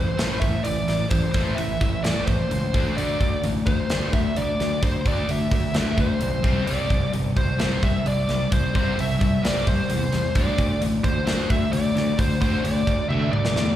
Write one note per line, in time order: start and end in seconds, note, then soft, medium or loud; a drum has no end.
0.00 0.12 A1 medium
0.00 0.17 A2 medium
0.00 0.17 E3 medium
0.00 0.38 C5 medium
0.18 0.34 A1 medium
0.18 0.41 A2 medium
0.18 0.41 E3 medium
0.18 0.41 A3 medium
0.18 snare loud
0.18 open hi-hat medium
0.40 0.58 A1 medium
0.40 0.63 A2 medium
0.40 0.63 E3 medium
0.40 0.65 E5 medium
0.40 kick medium
0.40 open hi-hat soft
0.63 0.81 A1 medium
0.63 0.86 A2 medium
0.63 0.87 E3 medium
0.63 1.10 D5 medium
0.63 open hi-hat medium
0.88 1.04 A1 medium
0.88 1.09 A2 medium
0.88 1.09 E3 medium
0.88 snare soft
0.88 open hi-hat medium
1.10 1.27 A1 medium
1.10 1.33 A2 medium
1.10 1.33 E3 medium
1.10 1.31 C5 medium
1.10 kick loud
1.10 open hi-hat medium
1.32 1.51 A1 medium
1.32 1.57 A2 medium
1.32 1.57 E3 medium
1.32 1.57 C5 medium
1.32 kick medium
1.32 open hi-hat medium
1.36 1.57 A3 medium
1.55 1.74 A1 medium
1.55 1.79 A2 medium
1.55 1.79 E3 medium
1.55 2.04 E5 medium
1.55 open hi-hat medium
1.81 1.97 A1 medium
1.81 2.02 A2 medium
1.81 2.02 E3 medium
1.81 kick medium
1.81 open hi-hat medium
2.03 2.21 A1 medium
2.03 2.26 A2 loud
2.03 2.26 E3 medium
2.03 2.27 A3 loud
2.03 2.25 D5 medium
2.03 snare medium
2.03 open hi-hat medium
2.25 2.44 A1 medium
2.25 2.49 A2 medium
2.25 2.49 E3 medium
2.25 2.96 C5 medium
2.25 kick medium
2.25 open hi-hat soft
2.51 2.67 C#2 medium
2.51 2.72 A2 medium
2.51 2.72 E3 medium
2.51 open hi-hat medium
2.74 2.90 D2 medium
2.74 2.96 D3 medium
2.74 2.96 A3 medium
2.74 2.96 D4 loud
2.74 kick loud
2.74 open hi-hat medium
2.97 3.13 D2 medium
2.97 3.19 D3 medium
2.97 3.19 A3 medium
2.97 3.20 D4 loud
2.97 3.40 D5 medium
2.97 open hi-hat medium
3.21 3.37 D2 medium
3.21 3.41 D3 medium
3.21 3.42 A3 medium
3.21 kick medium
3.21 open hi-hat soft
3.44 3.59 A1 medium
3.44 3.65 D3 medium
3.44 3.65 A3 medium
3.44 open hi-hat medium
3.66 3.83 D2 medium
3.66 3.88 D3 medium
3.66 3.88 A3 medium
3.66 4.09 C5 medium
3.66 kick medium
3.66 open hi-hat soft
3.90 4.06 D2 medium
3.90 4.12 D3 medium
3.90 4.12 A3 medium
3.90 4.13 D4 medium
3.90 snare medium
3.90 open hi-hat medium
4.13 4.29 D2 medium
4.13 4.34 D3 medium
4.13 4.35 A3 medium
4.13 4.35 E5 loud
4.13 kick medium
4.13 open hi-hat soft
4.36 4.52 D2 medium
4.36 4.58 D3 medium
4.36 4.58 A3 medium
4.36 4.83 D5 medium
4.36 open hi-hat medium
4.60 4.75 D2 medium
4.60 4.81 D3 medium
4.60 4.81 A3 medium
4.60 snare soft
4.60 open hi-hat soft
4.83 4.99 D2 medium
4.83 5.04 D3 medium
4.83 5.04 A3 medium
4.83 5.05 C5 medium
4.83 kick loud
4.83 open hi-hat medium
5.06 5.21 D2 medium
5.06 5.27 D3 medium
5.06 5.28 A3 medium
5.06 5.28 D4 medium
5.06 5.31 D5 medium
5.06 kick medium
5.06 open hi-hat medium
5.29 5.45 D2 medium
5.29 5.50 D3 medium
5.29 5.50 A3 medium
5.29 5.75 E5 medium
5.29 open hi-hat medium
5.51 5.67 D2 medium
5.51 5.73 D3 medium
5.51 5.73 A3 medium
5.51 kick medium
5.51 open hi-hat soft
5.74 5.91 D2 medium
5.74 5.97 D3 medium
5.74 5.97 A3 medium
5.74 5.97 D4 medium
5.74 5.99 E5 medium
5.74 snare medium
5.74 open hi-hat medium
5.98 6.14 D2 medium
5.98 6.19 D3 medium
5.98 6.19 A3 medium
5.98 6.67 C5 medium
5.98 kick medium
5.98 open hi-hat soft
6.21 6.37 B1 medium
6.21 6.42 D3 medium
6.21 6.42 A3 medium
6.21 open hi-hat medium
6.44 6.60 C2 medium
6.44 6.66 C3 medium
6.44 6.66 G3 loud
6.44 6.66 C4 medium
6.44 kick loud
6.44 open hi-hat soft
6.67 6.83 C2 medium
6.67 6.89 C3 medium
6.67 6.89 G3 medium
6.67 6.90 C4 loud
6.67 7.10 D5 medium
6.67 open hi-hat medium
6.90 7.06 C2 medium
6.90 7.11 C3 medium
6.90 7.11 G3 medium
6.90 kick medium
6.90 open hi-hat soft
7.13 7.29 G1 medium
7.13 7.34 C3 medium
7.13 7.35 G3 medium
7.13 open hi-hat medium
7.36 7.52 C2 medium
7.36 7.58 C3 medium
7.36 7.58 G3 medium
7.36 7.84 C5 medium
7.36 kick medium
7.36 open hi-hat soft
7.59 7.76 C2 medium
7.59 7.81 C3 medium
7.59 7.81 G3 medium
7.59 7.82 C4 medium
7.59 snare loud
7.59 open hi-hat medium
7.83 7.99 C2 medium
7.83 8.03 C3 medium
7.83 8.04 G3 medium
7.83 8.07 E5 medium
7.83 kick medium
7.83 open hi-hat soft
8.06 8.22 C2 medium
8.06 8.27 C3 medium
8.06 8.27 G3 medium
8.06 8.49 D5 medium
8.06 open hi-hat medium
8.29 8.45 C2 medium
8.29 8.50 C3 medium
8.29 8.50 G3 medium
8.29 snare soft
8.29 open hi-hat soft
8.52 8.68 C2 medium
8.52 8.72 C3 medium
8.52 8.73 G3 medium
8.52 8.75 C5 loud
8.52 kick loud
8.52 open hi-hat medium
8.75 8.91 C2 medium
8.75 8.96 C3 medium
8.75 8.97 G3 medium
8.75 8.97 C4 medium
8.75 8.99 C5 medium
8.75 kick medium
8.75 open hi-hat soft
8.98 9.14 C2 medium
8.98 9.19 C3 medium
8.98 9.19 G3 medium
8.98 9.45 E5 medium
8.98 open hi-hat medium
9.21 9.37 C2 medium
9.21 9.42 C3 medium
9.21 9.42 G3 medium
9.21 kick medium
9.21 open hi-hat medium
9.44 9.60 C2 medium
9.44 9.66 C3 medium
9.44 9.66 G3 medium
9.44 9.66 C4 loud
9.44 9.66 D5 medium
9.44 snare medium
9.44 open hi-hat medium
9.67 9.83 C2 medium
9.67 9.88 C3 medium
9.67 9.88 G3 medium
9.67 10.38 C5 medium
9.67 kick medium
9.67 open hi-hat medium
9.90 10.06 E2 medium
9.90 10.11 C3 medium
9.90 10.11 G3 medium
9.90 open hi-hat medium
10.13 10.29 E2 medium
10.13 10.33 C3 medium
10.13 10.34 G3 medium
10.13 snare soft
10.13 open hi-hat medium
10.35 10.51 D2 medium
10.35 10.57 D3 medium
10.35 10.58 A3 medium
10.35 10.58 D4 loud
10.35 10.79 D5 medium
10.35 kick loud
10.35 open hi-hat medium
10.58 10.74 D2 medium
10.58 10.79 D3 medium
10.58 10.79 A3 medium
10.58 kick medium
10.58 open hi-hat medium
10.81 10.97 A1 medium
10.81 11.02 D3 medium
10.81 11.02 A3 medium
10.81 open hi-hat medium
11.04 11.20 D2 medium
11.04 11.25 D3 medium
11.04 11.25 A3 medium
11.04 11.51 C5 medium
11.04 kick medium
11.04 open hi-hat soft
11.26 11.43 D2 medium
11.26 11.48 D3 medium
11.26 11.48 A3 medium
11.26 11.49 D4 loud
11.26 snare medium
11.26 open hi-hat medium
11.49 11.66 D2 medium
11.49 11.70 D3 medium
11.49 11.71 A3 medium
11.49 11.72 E5 loud
11.49 kick medium
11.49 open hi-hat soft
11.72 11.89 D2 medium
11.72 11.93 D3 medium
11.72 11.93 A3 medium
11.72 12.20 D5 loud
11.72 open hi-hat medium
11.95 12.11 D2 medium
11.95 12.16 D3 medium
11.95 12.16 A3 medium
11.95 snare soft
11.95 open hi-hat soft
12.18 12.34 D2 medium
12.18 12.39 D3 medium
12.18 12.39 A3 medium
12.18 12.40 C5 medium
12.18 kick loud
12.18 open hi-hat medium
12.41 12.57 D2 medium
12.41 12.62 D3 medium
12.41 12.63 A3 medium
12.41 12.63 D4 medium
12.41 12.65 C5 medium
12.41 kick medium
12.41 open hi-hat soft
12.64 12.80 D2 medium
12.64 12.85 D3 medium
12.64 12.85 A3 medium
12.64 13.08 D5 medium
12.64 open hi-hat medium
12.87 13.03 D2 medium
12.87 13.08 D3 medium
12.87 13.08 A3 medium
12.87 kick medium
12.87 open hi-hat medium
13.09 13.26 D2 medium
13.09 13.31 D3 loud
13.09 13.32 A3 medium
13.09 13.32 D4 loud
13.09 13.31 E5 medium
13.09 high tom soft
13.32 13.49 D2 medium
13.32 13.53 D3 medium
13.32 13.53 A3 medium
13.32 13.75 D5 medium
13.32 mid tom medium
13.45 snare medium
13.55 13.71 E2 medium
13.55 13.76 D3 medium
13.55 13.76 A3 medium
13.55 snare medium